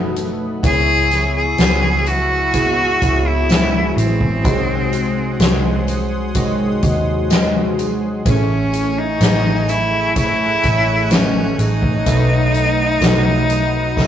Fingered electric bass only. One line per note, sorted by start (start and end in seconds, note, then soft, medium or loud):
0.00 0.59 F#1 medium
0.63 1.55 C#2 loud
1.58 2.97 C#2 medium
3.02 3.93 C#2 medium
3.96 4.44 A1 medium
4.44 5.36 C2 loud
5.40 6.78 C2 medium
6.83 8.22 D#2 medium
8.25 9.17 A1 loud
9.20 10.59 A1 medium
10.63 11.55 A1 medium
11.58 12.03 A1 medium
12.06 12.97 B1 loud
13.01 14.07 B1 medium